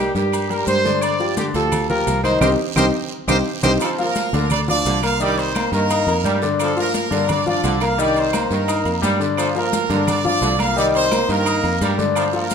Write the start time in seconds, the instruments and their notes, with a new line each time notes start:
Already playing: grand piano G3, trumpet section G4
0.00 grand piano G4 A#4
0.15 fingered electric bass G2, grand piano G3 G4 A#4, trumpet section G4, high conga, short guiro, maracas
0.32 high conga, low agogo, long guiro, claves, maracas
0.50 grand piano G3 G4 A#4, trumpet section A#4, high conga, low agogo, maracas
0.67 fingered electric bass G2, trumpet section C5, high conga, low agogo, short guiro, maracas
0.85 grand piano D3 D4 D5, high conga, short guiro, maracas
1.01 trumpet section D5, high conga, low agogo, long guiro, claves, maracas
1.19 grand piano F3 F4 G4, high conga, maracas
1.37 grand piano D3 D4 D5, trumpet section G4, high conga, low agogo, short guiro, maracas
1.54 fingered electric bass D2, grand piano F3 F4 G4, trumpet section A4, high conga, low agogo, short guiro, maracas
1.72 high conga, low conga, low agogo, long guiro, claves, maracas
1.89 grand piano F3 F4 G4, trumpet section A#4, high conga, low conga, maracas
2.07 fingered electric bass C2, high conga, low timbale, low agogo, short guiro, maracas
2.23 grand piano D#3 D#4 D#5, trumpet section C5, high conga, low agogo, short guiro, claves, maracas
2.41 fingered electric bass C2, grand piano C4 D#4 G4, trumpet section G4 A#4 C5, low conga, high timbale, long guiro, claves, maracas
2.76 fingered electric bass C2, grand piano C4 D#4 G4, trumpet section G4 A#4 C5, low conga, high timbale, claves, maracas
3.28 fingered electric bass C2, grand piano C4 D#4 G4, trumpet section G4 A#4 C5, low conga, high timbale, long guiro, claves, maracas
3.63 fingered electric bass C2, grand piano C4 D#4 G4, trumpet section G4 A#4 C5, low conga, high timbale, claves, maracas
3.80 trombone section F3, horn section A3 A4, high conga, low agogo, long guiro, claves, maracas
3.98 grand piano F3 F4 F5, horn section A#3 A#4, high conga, maracas
4.15 high conga, low agogo, short guiro, maracas
4.33 fingered electric bass D2, trombone section D3, grand piano D3 D4 D5, high conga, low agogo, short guiro, maracas
4.50 horn section D4 D5, high conga, low conga, low agogo, long guiro, claves, maracas
4.68 grand piano F3 F4 F5, horn section D4 D5, high conga, low conga, maracas
4.85 fingered electric bass C2, trombone section D3, high conga, low timbale, low agogo, short guiro, maracas
5.03 grand piano A#3 A#4 A#5, horn section F4 F5, low agogo, short guiro, claves, maracas
5.20 grand piano D#3 D#4 D#5, trombone section G3, horn section D4 D5, high conga, long guiro, maracas
5.37 horn section C4 C5, high conga, low agogo, maracas
5.55 grand piano A#3 A#4 A#5, high conga, low agogo, short guiro, claves, maracas
5.72 fingered electric bass G2, trombone section D#3, horn section A#3 A#4, high conga, short guiro, maracas
5.90 grand piano D#4 D#5 D#6, high conga, low agogo, long guiro, claves, maracas
6.07 fingered electric bass F2, grand piano A#3 A#4 A#5, high conga, low agogo, maracas
6.24 fingered electric bass G2, trombone section G3, high conga, low agogo, short guiro, maracas
6.42 grand piano D3 D4 D5, short guiro, maracas
6.59 trombone section F3, horn section A3 A4, high conga, low agogo, long guiro, claves, maracas
6.76 grand piano F3 F4 F5, horn section A#3 A#4, high conga, maracas
6.94 high conga, low agogo, short guiro, maracas
7.11 fingered electric bass G2, grand piano D3 D4 D5, trombone section D3, low agogo, short guiro, maracas
7.29 horn section D4 D5, high conga, low conga, low agogo, long guiro, claves, maracas
7.46 grand piano F3 F4 F5, horn section D4 D5, high conga, low conga, maracas
7.63 fingered electric bass C2, trombone section D3, high conga, low timbale, low agogo, short guiro, maracas
7.80 grand piano A#3 A#4 A#5, horn section F4 F5, low agogo, short guiro, claves, maracas
7.98 grand piano D#3 D#4 D#5, trombone section G3, horn section D4 D5, high conga, long guiro, maracas
8.16 horn section C4 C5, high conga, low agogo, maracas
8.33 grand piano A#3 A#4 A#5, high conga, low agogo, short guiro, claves, maracas
8.51 fingered electric bass G2, trombone section D#3, horn section A#3 A#4, high conga, short guiro, maracas
8.68 grand piano D#4 D#5 D#6, high conga, low agogo, long guiro, claves, maracas
8.85 fingered electric bass F2, grand piano A#3 A#4 A#5, high conga, low agogo, maracas
9.02 fingered electric bass G2, trombone section G3, high conga, low timbale, low agogo, short guiro, maracas
9.20 grand piano D3 D4 D5, short guiro, maracas
9.37 trombone section F3, horn section A3 A4, high conga, low agogo, long guiro, claves, maracas
9.55 grand piano F3 F4 F5, horn section A#3 A#4, high conga, maracas
9.73 high conga, low agogo, short guiro, maracas
9.90 fingered electric bass G2, grand piano D3 D4 D5, trombone section D3, high conga, low agogo, short guiro, maracas
10.07 horn section D4 D5, high conga, low conga, low agogo, long guiro, claves, maracas
10.24 grand piano F3 F4 F5, horn section D4 D5, high conga, low conga, maracas
10.41 fingered electric bass C2, trombone section D3, high conga, low timbale, low agogo, short guiro, maracas
10.59 grand piano A#3 A#4 A#5, horn section F4 F5, high conga, low agogo, short guiro, claves, maracas
10.76 grand piano D#3 D#4 D#5, trombone section G3, horn section D4 D5, long guiro, maracas
10.95 horn section C4 C5, high conga, low agogo, maracas
11.11 grand piano A#3 A#4 A#5, high conga, low agogo, short guiro, claves, maracas
11.27 fingered electric bass G2, trombone section D#3, horn section A#3 A#4, high conga, short guiro, maracas
11.46 grand piano D#4 D#5 D#6, high conga, low agogo, long guiro, claves, maracas
11.63 fingered electric bass F2, grand piano A#3 A#4 A#5, high conga, low agogo, maracas
11.81 fingered electric bass G2, trombone section G3, high conga, low agogo, short guiro, maracas
11.98 grand piano D3 D4 D5, high conga, short guiro, maracas
12.15 trombone section F3, horn section A3 A4, high conga, low agogo, long guiro, claves, maracas
12.33 grand piano F3 F4 F5, horn section A#3 A#4, high conga, maracas
12.50 high conga, low agogo, short guiro, maracas